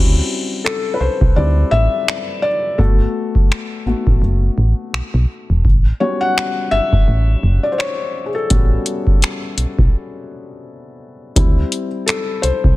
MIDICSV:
0, 0, Header, 1, 4, 480
1, 0, Start_track
1, 0, Tempo, 714286
1, 1876, Time_signature, 4, 2, 24, 8
1, 8578, End_track
2, 0, Start_track
2, 0, Title_t, "Felt piano"
2, 0, Program_c, 0, 0
2, 0, Note_on_c, 0, 55, 54
2, 0, Note_on_c, 0, 60, 47
2, 0, Note_on_c, 0, 61, 55
2, 0, Note_on_c, 0, 64, 59
2, 0, Note_on_c, 0, 66, 62
2, 84, Note_off_c, 0, 66, 0
2, 86, Note_off_c, 0, 61, 0
2, 87, Control_c, 0, 64, 127
2, 433, Note_on_c, 0, 69, 78
2, 631, Note_on_c, 0, 71, 64
2, 641, Note_off_c, 0, 69, 0
2, 648, Note_off_c, 0, 55, 0
2, 650, Note_off_c, 0, 60, 0
2, 652, Note_off_c, 0, 64, 0
2, 673, Note_off_c, 0, 71, 0
2, 675, Note_on_c, 0, 72, 91
2, 898, Note_off_c, 0, 72, 0
2, 915, Note_on_c, 0, 74, 87
2, 918, Note_on_c, 0, 55, 46
2, 921, Note_on_c, 0, 60, 43
2, 924, Note_on_c, 0, 64, 50
2, 969, Note_off_c, 0, 74, 0
2, 1133, Note_off_c, 0, 55, 0
2, 1135, Note_off_c, 0, 60, 0
2, 1136, Note_off_c, 0, 64, 0
2, 1150, Note_on_c, 0, 76, 106
2, 1628, Note_on_c, 0, 74, 94
2, 1647, Note_off_c, 0, 76, 0
2, 1855, Note_off_c, 0, 74, 0
2, 1869, Note_on_c, 0, 69, 73
2, 1876, Note_on_c, 0, 57, 53
2, 1879, Note_on_c, 0, 59, 47
2, 1883, Control_c, 0, 64, 0
2, 1883, Note_on_c, 0, 66, 61
2, 1990, Control_c, 0, 64, 127
2, 2325, Note_off_c, 0, 69, 0
2, 2569, Note_off_c, 0, 57, 0
2, 2570, Note_off_c, 0, 59, 0
2, 2572, Note_off_c, 0, 66, 0
2, 2597, Note_on_c, 0, 57, 49
2, 2599, Note_on_c, 0, 59, 44
2, 2602, Note_on_c, 0, 66, 52
2, 2812, Note_off_c, 0, 57, 0
2, 2814, Note_off_c, 0, 59, 0
2, 2815, Note_off_c, 0, 66, 0
2, 3803, Control_c, 0, 64, 0
2, 3909, Control_c, 0, 64, 127
2, 4034, Note_on_c, 0, 73, 88
2, 4035, Note_on_c, 0, 55, 53
2, 4037, Note_on_c, 0, 59, 50
2, 4039, Note_on_c, 0, 61, 50
2, 4043, Note_on_c, 0, 66, 58
2, 4171, Note_on_c, 0, 78, 102
2, 4178, Note_off_c, 0, 73, 0
2, 4511, Note_on_c, 0, 76, 113
2, 4524, Note_off_c, 0, 78, 0
2, 5105, Note_off_c, 0, 76, 0
2, 5130, Note_on_c, 0, 74, 80
2, 5158, Note_off_c, 0, 74, 0
2, 5188, Note_on_c, 0, 72, 66
2, 5230, Note_on_c, 0, 73, 90
2, 5231, Note_off_c, 0, 72, 0
2, 5551, Note_on_c, 0, 68, 54
2, 5567, Note_off_c, 0, 73, 0
2, 5609, Note_on_c, 0, 69, 75
2, 5610, Note_off_c, 0, 68, 0
2, 5703, Note_off_c, 0, 55, 0
2, 5705, Note_off_c, 0, 59, 0
2, 5709, Note_off_c, 0, 61, 0
2, 5710, Note_off_c, 0, 66, 0
2, 5713, Note_on_c, 0, 55, 52
2, 5715, Note_on_c, 0, 59, 50
2, 5719, Note_on_c, 0, 61, 50
2, 5720, Note_on_c, 0, 66, 58
2, 6305, Note_off_c, 0, 69, 0
2, 7607, Note_off_c, 0, 55, 0
2, 7608, Note_off_c, 0, 59, 0
2, 7610, Note_off_c, 0, 61, 0
2, 7611, Note_off_c, 0, 66, 0
2, 7632, Note_on_c, 0, 55, 54
2, 7636, Note_on_c, 0, 60, 48
2, 7640, Note_on_c, 0, 64, 59
2, 7643, Control_c, 0, 64, 0
2, 7764, Control_c, 0, 64, 127
2, 7967, Note_off_c, 0, 55, 0
2, 7969, Note_off_c, 0, 60, 0
2, 7972, Note_off_c, 0, 64, 0
2, 8107, Note_on_c, 0, 69, 75
2, 8347, Note_on_c, 0, 72, 84
2, 8358, Note_off_c, 0, 69, 0
2, 8578, Note_off_c, 0, 72, 0
2, 8578, End_track
3, 0, Start_track
3, 0, Title_t, "FM bass"
3, 0, Program_c, 1, 39
3, 0, Note_on_c, 1, 38, 106
3, 143, Note_off_c, 1, 38, 0
3, 676, Note_on_c, 1, 36, 46
3, 731, Note_off_c, 1, 36, 0
3, 815, Note_on_c, 1, 36, 90
3, 893, Note_off_c, 1, 36, 0
3, 916, Note_on_c, 1, 38, 98
3, 1103, Note_off_c, 1, 38, 0
3, 1155, Note_on_c, 1, 33, 84
3, 1264, Note_off_c, 1, 33, 0
3, 1874, Note_on_c, 1, 31, 107
3, 2062, Note_off_c, 1, 31, 0
3, 2594, Note_on_c, 1, 33, 44
3, 2650, Note_off_c, 1, 33, 0
3, 2733, Note_on_c, 1, 33, 96
3, 2813, Note_off_c, 1, 33, 0
3, 2835, Note_on_c, 1, 30, 95
3, 3023, Note_off_c, 1, 30, 0
3, 3075, Note_on_c, 1, 33, 93
3, 3184, Note_off_c, 1, 33, 0
3, 3316, Note_on_c, 1, 35, 47
3, 3371, Note_off_c, 1, 35, 0
3, 3455, Note_on_c, 1, 35, 91
3, 3533, Note_off_c, 1, 35, 0
3, 3695, Note_on_c, 1, 28, 83
3, 3795, Note_on_c, 1, 33, 99
3, 3805, Note_off_c, 1, 28, 0
3, 3983, Note_off_c, 1, 33, 0
3, 4517, Note_on_c, 1, 31, 43
3, 4572, Note_off_c, 1, 31, 0
3, 4655, Note_on_c, 1, 31, 83
3, 4734, Note_off_c, 1, 31, 0
3, 4757, Note_on_c, 1, 33, 92
3, 4944, Note_off_c, 1, 33, 0
3, 4995, Note_on_c, 1, 30, 92
3, 5104, Note_off_c, 1, 30, 0
3, 5715, Note_on_c, 1, 33, 109
3, 5903, Note_off_c, 1, 33, 0
3, 6435, Note_on_c, 1, 35, 47
3, 6491, Note_off_c, 1, 35, 0
3, 6576, Note_on_c, 1, 35, 87
3, 6654, Note_off_c, 1, 35, 0
3, 7636, Note_on_c, 1, 38, 106
3, 7823, Note_off_c, 1, 38, 0
3, 8357, Note_on_c, 1, 36, 45
3, 8412, Note_off_c, 1, 36, 0
3, 8495, Note_on_c, 1, 36, 88
3, 8574, Note_off_c, 1, 36, 0
3, 8578, End_track
4, 0, Start_track
4, 0, Title_t, "Drums"
4, 446, Note_on_c, 9, 26, 101
4, 513, Note_off_c, 9, 26, 0
4, 814, Note_on_c, 9, 36, 80
4, 881, Note_off_c, 9, 36, 0
4, 1400, Note_on_c, 9, 26, 102
4, 1468, Note_off_c, 9, 26, 0
4, 1874, Note_on_c, 9, 36, 107
4, 1941, Note_off_c, 9, 36, 0
4, 2252, Note_on_c, 9, 36, 89
4, 2319, Note_off_c, 9, 36, 0
4, 2363, Note_on_c, 9, 26, 98
4, 2431, Note_off_c, 9, 26, 0
4, 2734, Note_on_c, 9, 36, 82
4, 2801, Note_off_c, 9, 36, 0
4, 3321, Note_on_c, 9, 26, 98
4, 3388, Note_off_c, 9, 26, 0
4, 3795, Note_on_c, 9, 36, 102
4, 3862, Note_off_c, 9, 36, 0
4, 4285, Note_on_c, 9, 26, 100
4, 4353, Note_off_c, 9, 26, 0
4, 4655, Note_on_c, 9, 36, 85
4, 4722, Note_off_c, 9, 36, 0
4, 5241, Note_on_c, 9, 26, 100
4, 5308, Note_off_c, 9, 26, 0
4, 5713, Note_on_c, 9, 42, 74
4, 5715, Note_on_c, 9, 36, 110
4, 5781, Note_off_c, 9, 42, 0
4, 5783, Note_off_c, 9, 36, 0
4, 5953, Note_on_c, 9, 42, 53
4, 6021, Note_off_c, 9, 42, 0
4, 6093, Note_on_c, 9, 36, 85
4, 6161, Note_off_c, 9, 36, 0
4, 6198, Note_on_c, 9, 42, 64
4, 6207, Note_on_c, 9, 26, 102
4, 6265, Note_off_c, 9, 42, 0
4, 6275, Note_off_c, 9, 26, 0
4, 6435, Note_on_c, 9, 42, 61
4, 6503, Note_off_c, 9, 42, 0
4, 6576, Note_on_c, 9, 36, 84
4, 6643, Note_off_c, 9, 36, 0
4, 7636, Note_on_c, 9, 36, 112
4, 7636, Note_on_c, 9, 42, 71
4, 7703, Note_off_c, 9, 36, 0
4, 7703, Note_off_c, 9, 42, 0
4, 7876, Note_on_c, 9, 42, 57
4, 7943, Note_off_c, 9, 42, 0
4, 8116, Note_on_c, 9, 42, 64
4, 8125, Note_on_c, 9, 26, 100
4, 8183, Note_off_c, 9, 42, 0
4, 8192, Note_off_c, 9, 26, 0
4, 8356, Note_on_c, 9, 42, 61
4, 8423, Note_off_c, 9, 42, 0
4, 8496, Note_on_c, 9, 36, 84
4, 8563, Note_off_c, 9, 36, 0
4, 8578, End_track
0, 0, End_of_file